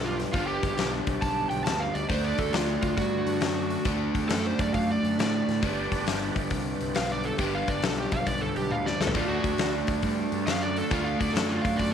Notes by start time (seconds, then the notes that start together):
Already playing: B1 G2 D3 G3 D4 G4 B4 D5
0.04 F4
0.20 snare, open hi-hat
0.33 G1 G2 D3 F4, kick, open hi-hat
0.38 G3
0.47 G4
0.63 G1, kick, open hi-hat
0.77 B1, snare, open hi-hat
1.07 B1, kick, open hi-hat
1.22 B1 A5, kick, open hi-hat
1.50 B1 G5, open hi-hat
1.64 D2 A5, snare, open hi-hat
1.80 F5
1.94 D2 D5, open hi-hat
2.09 D2 D3 A3 D4 F#4 A4 C5 D5, kick, open hi-hat
2.24 D5
2.38 D2 A4, kick, open hi-hat
2.53 D2 F4, snare, open hi-hat
2.82 D2 F4, kick, open hi-hat
2.97 G2 F#4, kick, open hi-hat
3.26 G2, open hi-hat
3.41 F#2, snare, open hi-hat
3.70 open hi-hat
3.85 D2 D3 A3 D4, kick, open hi-hat
4.15 D2, kick, open hi-hat
4.29 F#2 A4, snare, open hi-hat
4.46 C5
4.59 F#2 D5, kick, open hi-hat
4.74 F#2 F5, kick, open hi-hat
4.91 D5
5.03 F#2, open hi-hat
5.18 A2 D5, snare, open hi-hat
5.48 A2, snare, open hi-hat
5.63 G1 G2 D3 G3 D4 G4 B4 D5, kick, open hi-hat
5.92 G1, kick, open hi-hat
6.07 G1, snare, open hi-hat
6.36 G1, kick, open hi-hat
6.50 C2, kick, open hi-hat
6.81 C2, open hi-hat
6.95 B1 F5, snare, open hi-hat
7.12 D5
7.24 A4, open hi-hat
7.38 G1 G2 D3 G3 G4, kick, open hi-hat
7.55 F5
7.68 G1 D5, kick, open hi-hat
7.82 B1 A4, snare, open hi-hat
7.99 G4
8.12 B1 F5, kick, open hi-hat
8.26 B1 D5, kick, open hi-hat
8.41 A4
8.56 B1 G4, open hi-hat
8.71 D2 F5, high tom
8.86 D5, snare
9.00 D2 A4, snare
9.07 floor tom
9.14 D2 D3 A3 D4 F4 F#4 A4 D5, kick, open hi-hat
9.29 F#4
9.44 D2, kick, open hi-hat
9.58 D2, snare, open hi-hat
9.87 D2, kick, open hi-hat
10.02 G2, kick, open hi-hat
10.32 G2, open hi-hat
10.47 F#2 F5, snare, open hi-hat
10.62 D5
10.77 A4, open hi-hat
10.91 D2 D3 A3 D4 F4, kick, open hi-hat
11.04 F5
11.20 D2 D5, kick, open hi-hat
11.29 snare
11.33 F#2 A4, snare, open hi-hat
11.49 F4
11.62 F#2 F5, kick, open hi-hat
11.77 F#2 D5, kick, open hi-hat